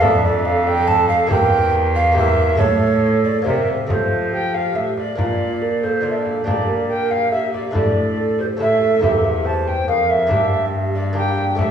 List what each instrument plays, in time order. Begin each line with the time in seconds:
0.00 lute F2 A3 D4 A4, cello F2, recorder A4 E5, frame drum
0.25 recorder D5
0.45 recorder A4 F5
0.67 recorder G5, frame drum
0.87 recorder A4 A5, frame drum
1.09 recorder F5, frame drum
1.27 lute A#3 E4 G4, recorder A#4 G5, frame drum
1.31 lute E2, cello E2
1.95 recorder F5, frame drum
2.12 lute A#3 E4 G4, recorder A#4
2.16 recorder E5, frame drum
2.37 frame drum
2.55 lute A2 A3 E4 A4, recorder A4 C#5, frame drum
2.60 cello A2
3.24 recorder D5, frame drum
3.42 lute A#3 C4 G4, recorder A#4
3.46 lute C3, cello C3, recorder E5, frame drum
3.68 frame drum
3.87 cello F3, lute F3 A3 C4 F4, recorder A4 C#5, frame drum
3.93 recorder C5
4.32 recorder G4 G5
4.53 recorder F5, frame drum
4.75 lute A2, cello A2, recorder E5
4.96 recorder D5, frame drum
5.15 cello A#2, lute A#2 A#3 D4 F4, recorder F4, frame drum
5.62 recorder A#4
5.82 recorder A4 C5, frame drum
6.01 lute A#3 D4 F4, recorder D5
6.10 recorder E5
6.17 recorder D5
6.26 frame drum
6.44 lute A#2 D4 G4, cello A#2, recorder G4 D5, frame drum
6.67 recorder A#4
6.88 recorder A#4 G5
7.10 recorder F5, frame drum
7.31 recorder G4 E5
7.53 recorder D5, frame drum
7.71 lute A2 A3 D4 E4, recorder A4
7.75 cello A2, frame drum
8.19 recorder A4
8.39 recorder G4 C5, frame drum
8.57 lute A2 A3 C#4 E4, recorder A4
8.61 cello A2, recorder E5
8.81 frame drum
8.99 cello E2, lute A#3 E4 G4, recorder A4 E5, frame drum
9.03 lute E2
9.24 recorder G4
9.45 recorder C5 A5
9.67 recorder G5, frame drum
9.88 cello F2, lute F2, recorder A#4 F5
10.09 recorder E5, frame drum
10.27 lute G2 A#3 D4 G4
10.31 cello G2, recorder G4, frame drum
10.94 recorder D5, frame drum
11.13 lute A#3 D4 G4, recorder G4 G5
11.38 frame drum
11.55 lute A2 A3 C#4 G4, recorder E5, frame drum
11.59 cello A2, recorder G4